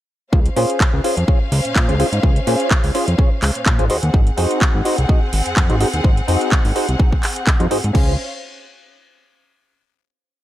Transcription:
0.32 analog synth bass C#2, clav C#4 F4 G#4 C5, string section C#4 C5 F5, kick
0.46 closed hi-hat
0.56 analog synth bass A#2, clav C#4 F4 G#4 C5, open hi-hat
0.70 closed hi-hat
0.80 kick, clap
0.93 analog synth bass C#2
1.04 clav C#4 F4 G#4 C5, open hi-hat
1.17 analog synth bass F2, closed hi-hat
1.28 clav C#4 F4 G#4 C#5, kick
1.52 analog synth bass C#2, open hi-hat
1.65 analog synth bass A#2, closed hi-hat
1.76 analog synth bass A#2, kick, clap
1.88 analog synth bass C#2, clav C#4 F4 G#4 C5, closed hi-hat
1.99 clav C#4 F4 G#4 C5, open hi-hat
2.13 analog synth bass G#2, closed hi-hat
2.23 analog synth bass C#2, clav C#4 F4 G#4 C5, kick
2.36 closed hi-hat
2.47 analog synth bass A#2, clav C#4 F4 G#4 C5, open hi-hat
2.60 closed hi-hat
2.71 kick, clap
2.84 analog synth bass C#2, open hi-hat
2.94 clav C#4 F4 G#4 C5, open hi-hat
3.08 analog synth bass F2, closed hi-hat
3.18 clav C#4 F4 G#4 C#5, kick
3.42 analog synth bass C#2, clap, open hi-hat
3.55 analog synth bass A#2, closed hi-hat
3.66 analog synth bass A#2, kick, clap
3.78 analog synth bass G#1, clav C#4 F4 G#4 C5, closed hi-hat
3.89 analog synth bass D#2, string section C4 G#4 F#5, clav D#4 F#4 G#4 C5, open hi-hat
4.03 analog synth bass D#2, closed hi-hat
4.13 analog synth bass G#1, clav D#4 F#4 G#4 C5, kick
4.27 closed hi-hat
4.37 analog synth bass F2, clav D#4 F#4 G#4 C5, open hi-hat
4.51 closed hi-hat
4.61 kick, clap
4.75 analog synth bass G#1
4.85 clav D#4 F#4 G#4 C5, open hi-hat
4.98 analog synth bass C2, closed hi-hat
5.08 clav D#4 F#4 G#4 D#5, kick
5.33 analog synth bass G#1, open hi-hat
5.46 analog synth bass F2, closed hi-hat
5.57 analog synth bass F2, kick, clap
5.69 analog synth bass G#1, clav D#4 F#4 G#4 C5, closed hi-hat
5.80 clav D#4 F#4 G#4 C5, open hi-hat
5.93 analog synth bass D#2, closed hi-hat
6.04 analog synth bass G#1, clav D#4 F#4 G#4 C5, kick
6.17 closed hi-hat
6.27 analog synth bass F2, clav D#4 F#4 G#4 C5, open hi-hat
6.41 closed hi-hat
6.52 kick, clap
6.65 analog synth bass G#1, open hi-hat
6.75 clav D#4 F#4 G#4 C5, open hi-hat
6.89 analog synth bass C2, closed hi-hat
6.99 clav D#4 F#4 G#4 D#5, kick
7.12 kick
7.23 clap, open hi-hat
7.36 closed hi-hat
7.47 kick, clap
7.59 analog synth bass F2, clav D#4 F#4 G#4 C5, closed hi-hat
7.71 analog synth bass G#2, clav D#4 F#4 G#4 C5, open hi-hat
7.84 analog synth bass G#2, closed hi-hat
7.93 analog synth bass C#2, clav C#4 F4 G#4 C5, string section C#4 C5 F5, kick, crash

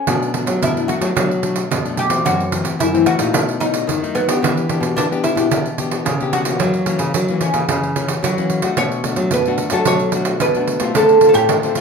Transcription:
Already playing: oud C#4
0.07 nylon-string guitar B2 F#3 A3 D4, pandeiro
0.22 pandeiro
0.34 nylon-string guitar F#3 A3 D4, pandeiro
0.46 nylon-string guitar F#3, pandeiro
0.62 nylon-string guitar F#2 B2, oud E4, pandeiro
0.76 nylon-string guitar F#3 A3 D4, pandeiro
0.88 oud F#4, pandeiro
1.01 nylon-string guitar F#3 A3 D4, pandeiro
1.16 nylon-string guitar B2 F#3 A3 D4, pandeiro
1.31 pandeiro
1.43 nylon-string guitar F#3 A3 D4, pandeiro
1.56 pandeiro
1.71 nylon-string guitar F#2 B2, pandeiro
1.85 nylon-string guitar F#3 A3 D4, pandeiro
1.97 oud G4, pandeiro
2.09 nylon-string guitar E3 A3 C4, pandeiro
2.25 nylon-string guitar F#2, oud F#4, pandeiro
2.40 pandeiro
2.52 nylon-string guitar E3 A3 C4, pandeiro
2.64 nylon-string guitar C3, pandeiro
2.79 nylon-string guitar F#2, oud E4, pandeiro
2.94 nylon-string guitar E3 A3 C4, pandeiro
3.06 oud F#4, pandeiro
3.19 nylon-string guitar A#2 F#3 A3 D#4, pandeiro
3.33 nylon-string guitar B2, pandeiro
3.49 pandeiro
3.60 nylon-string guitar F#3 A3 D#4, oud D#4, pandeiro
3.74 pandeiro
3.87 nylon-string guitar F#2 D#3, pandeiro
4.03 nylon-string guitar F#3 A3 D#4, pandeiro
4.15 oud B3, pandeiro
4.28 nylon-string guitar B3 D4 G4, pandeiro
4.42 nylon-string guitar E3, pandeiro
4.57 pandeiro
4.69 nylon-string guitar B3 D4 G4, pandeiro
4.80 nylon-string guitar B2, pandeiro
4.96 nylon-string guitar B2 E3, oud D4, pandeiro
5.12 nylon-string guitar B3 D4 G4, pandeiro
5.24 oud E4, pandeiro
5.35 nylon-string guitar B2 B3 D4 G4, pandeiro
5.51 nylon-string guitar B2 E3 B3 D4 G4, pandeiro
5.66 pandeiro
5.78 nylon-string guitar B3 D4 G4, pandeiro
5.91 pandeiro
6.05 nylon-string guitar B2 C#3, pandeiro
6.20 nylon-string guitar B3 D4 G4, pandeiro
6.33 oud F#4, pandeiro
6.45 nylon-string guitar E3 A#3 C#4, pandeiro
6.59 nylon-string guitar F#2 F#3, pandeiro
6.74 pandeiro
6.86 nylon-string guitar E3 A#3 C#4, pandeiro
6.98 nylon-string guitar C#3, pandeiro
7.14 nylon-string guitar F#3, pandeiro
7.28 nylon-string guitar E3 A#3 C#4, pandeiro
7.41 oud C#4, pandeiro
7.54 nylon-string guitar C#3 E3 A#3 C#4, pandeiro
7.68 nylon-string guitar F#2 C#3 E3 A#3 C#4, pandeiro
7.83 pandeiro
7.96 nylon-string guitar E3 A#3 C#4, pandeiro
8.08 pandeiro
8.23 nylon-string guitar C#3 F#3, oud F#4, pandeiro
8.38 nylon-string guitar E3 A#3 C#4, pandeiro
8.50 pandeiro
8.62 nylon-string guitar A3 D4 F#4, pandeiro
8.77 nylon-string guitar B2, oud C#5, pandeiro
8.92 pandeiro
9.04 nylon-string guitar A3 D4 F#4, pandeiro
9.16 nylon-string guitar F#3, pandeiro
9.31 nylon-string guitar F#2 B2, oud B4, pandeiro
9.45 nylon-string guitar A3 D4 F#4, pandeiro
9.58 pandeiro
9.70 nylon-string guitar F#3 A3 D4 F#4, oud A4, pandeiro
9.85 nylon-string guitar B2 F#3 A3 D4 F#4, oud C#5, pandeiro
9.99 pandeiro
10.12 nylon-string guitar A3 D4 F#4, pandeiro
10.25 pandeiro
10.40 nylon-string guitar F#2 B2, oud B4, pandeiro
10.55 nylon-string guitar A3 D4 F#4, pandeiro
10.68 pandeiro
10.80 nylon-string guitar A3 C4 F4, pandeiro
10.94 nylon-string guitar D3, oud A4, pandeiro
11.09 pandeiro
11.21 nylon-string guitar A3 C4 F4, pandeiro
11.29 oud A4
11.33 nylon-string guitar A2, oud G4, pandeiro
11.49 nylon-string guitar A2 D3, pandeiro
11.63 nylon-string guitar A3 C4 F4, pandeiro
11.75 oud F4, pandeiro

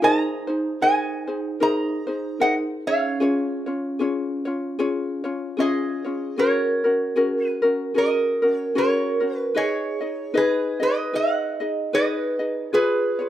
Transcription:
0.02 vibraphone D#4, ukulele D#4 G#4 A#4 C5, resonator guitar played with a steel bar D#5 A#5
0.47 ukulele D#4 G#4 C5
0.81 vibraphone D#4, ukulele D#4 G#4 A#4 C5, resonator guitar played with a steel bar D#5 G#5
1.27 ukulele D#4 G#4 C5
1.60 vibraphone D#4, ukulele D#4 G#4 A#4 C5, resonator guitar played with a steel bar D#5 A#5
2.07 ukulele D#4 G#4 C5
2.40 ukulele D#4 G#4 A#4 C5, vibraphone D#4, resonator guitar played with a steel bar D#5 F#5
2.87 vibraphone C#4, ukulele D#4 G#4, resonator guitar played with a steel bar C#5 F5
3.20 ukulele C#4 F4 G#4 C#5
3.66 ukulele C#4 F4 C#5
3.99 ukulele C#4 F4 G#4 C#5
4.45 ukulele C#4 F4 C#5
4.79 ukulele C#4 F4 G#4 C#5
5.24 ukulele C#4 F4 C#5
5.57 ukulele C#4 F4 G#4 C#5, vibraphone G#4, resonator guitar played with a steel bar D#5
5.61 resonator guitar played with a steel bar G#4
6.04 ukulele C#4 F4 C#5
6.37 ukulele C#4 F#4 G#4 A#4, vibraphone A#4, resonator guitar played with a steel bar A#4 C#5
6.84 ukulele C#4 F#4 A#4
7.16 ukulele C#4 F#4 G#4 A#4
7.47 resonator guitar played with a steel bar B4
7.62 ukulele C#4 F#4 A#4
7.94 ukulele C#4 F#4 G#4 A#4, vibraphone A#4, resonator guitar played with a steel bar A#4 D#5
8.42 ukulele C#4 F#4 A#4
8.57 resonator guitar played with a steel bar C#5
8.75 ukulele C#4 F#4 G#4 A#4, vibraphone A#4, resonator guitar played with a steel bar A#4 C#5
9.20 ukulele C#4 F#4 A#4
9.37 resonator guitar played with a steel bar B4
9.55 ukulele D#4 G#4 B4 D#5, vibraphone G#4, resonator guitar played with a steel bar G#4 C#5
10.01 ukulele D#4 G#4 D#5
10.34 ukulele D#4 G#4 B4 D#5, vibraphone G#4, resonator guitar played with a steel bar G#4 B4
10.80 ukulele D#4 G#4 D#5, resonator guitar played with a steel bar B4 D#5, vibraphone B4
11.13 ukulele D#4 G#4 B4 D#5, resonator guitar played with a steel bar D#5 F#5, vibraphone D#5
11.60 ukulele D#4 G#4 D#5
11.93 ukulele D#4 G#4 B4 D#5, resonator guitar played with a steel bar B4 D#5, vibraphone B4
12.39 ukulele D#4 G#4 D#5
12.73 ukulele F4 G#4 B4 C#5, resonator guitar played with a steel bar G#4 B4, vibraphone G#4
13.19 ukulele F4 G#4 C#5

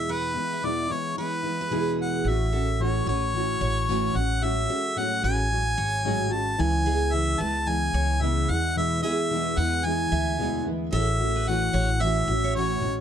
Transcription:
Already playing: nylon-string guitar E2 B2 E3 G#3 B3 E4, harmonica E5
0.09 harmonica B4, steel-string acoustic guitar F#5
0.34 nylon-string guitar E3 G#3 B3 E4
0.53 steel-string acoustic guitar E5
0.62 nylon-string guitar E2 B2 E3 G#3 B3 E4, harmonica D5
0.89 nylon-string guitar E3 G#3 B3 E4, harmonica C#5
1.17 nylon-string guitar E3 G#3 B3 E4, harmonica B4, steel-string acoustic guitar C#5
1.43 nylon-string guitar E3 G#3 B3 E4
1.61 steel-string acoustic guitar B4
1.71 nylon-string guitar E2 B2 E3 G#3 B3 E4, steel-string acoustic guitar G#4
2.01 harmonica F#5
2.25 upright bass A1, nylon-string guitar A2 E3 A3 C#4 F#4, harmonica E5
2.53 nylon-string guitar A3 C#4 F#4, steel-string acoustic guitar A4
2.79 nylon-string guitar A2 E3 A3 C#4 F#4, harmonica C#5
3.06 upright bass A1, nylon-string guitar A3 C#4 F#4, steel-string acoustic guitar B4, harmonica C#5
3.33 nylon-string guitar E3 A3 C#4 F#4
3.61 upright bass A1, steel-string acoustic guitar C#5
3.88 nylon-string guitar A2 E3 A3 C#4 F#4
4.14 upright bass A1, nylon-string guitar G#3 C#4 F#4, harmonica F#5
4.41 nylon-string guitar A2 F#3 G#3 C#4 F#4, harmonica E5
4.67 nylon-string guitar G#3 C#4 F#4, steel-string acoustic guitar A4
4.96 nylon-string guitar A2 F#3 G#3 C#4 F#4, harmonica F#5
5.23 upright bass A1, nylon-string guitar G#3 C#4 F#4, steel-string acoustic guitar B4, harmonica G#5
5.50 nylon-string guitar F#3 G#3 C#4 F#4
5.78 upright bass G#1, steel-string acoustic guitar C#5
6.04 nylon-string guitar A2 F#3 G#3 C#4 F#4
6.29 nylon-string guitar G#3 C#4 F#4, harmonica A5
6.57 upright bass C#2, nylon-string guitar C#3 E3 G#3 B3 E4, harmonica G#5
6.85 nylon-string guitar G#3 B3 E4, steel-string acoustic guitar G#4
7.12 nylon-string guitar C#3 E3 G#3 B3 E4, harmonica E5
7.38 upright bass C#2, nylon-string guitar G#3 B3 E4, steel-string acoustic guitar B4, harmonica A5
7.66 nylon-string guitar E3 G#3 B3 E4, harmonica G#5
7.94 upright bass C#2, steel-string acoustic guitar C#5
8.20 nylon-string guitar C#3 E3 G#3 B3 E4, harmonica E5
8.49 upright bass E2, nylon-string guitar E3 G#3 B3 E4, harmonica F#5
8.75 nylon-string guitar E2 B2 E3 G#3 B3 E4, harmonica E5
9.02 nylon-string guitar E3 G#3 B3 E4, steel-string acoustic guitar G#4, harmonica E5
9.30 nylon-string guitar E2 B2 E3 G#3 B3 E4
9.56 upright bass E2, nylon-string guitar E3 G#3 B3 E4, steel-string acoustic guitar B4, harmonica F#5
9.83 nylon-string guitar E3 G#3 B3 E4, harmonica G#5
10.12 upright bass D2, steel-string acoustic guitar E5
10.38 nylon-string guitar E2 B2 E3 G#3 B3 E4
10.65 nylon-string guitar E3 G#3 B3 E4
10.92 upright bass A1, nylon-string guitar A2 E3 A3 C#4 F#4, steel-string acoustic guitar A4, harmonica E5
11.20 nylon-string guitar A3 C#4 F#4
11.36 steel-string acoustic guitar B4
11.47 nylon-string guitar A2 E3 A3 C#4 F#4, harmonica F#5
11.73 upright bass A1, steel-string acoustic guitar C#5
12.00 nylon-string guitar E3 A3 C#4 F#4, steel-string acoustic guitar E5, harmonica E5
12.28 upright bass A1, nylon-string guitar A3 C#4 F#4
12.44 steel-string acoustic guitar C#5
12.55 nylon-string guitar A2 E3 A3 C#4 F#4, harmonica C#5
12.81 upright bass A1, nylon-string guitar G#3 C#4 F#4

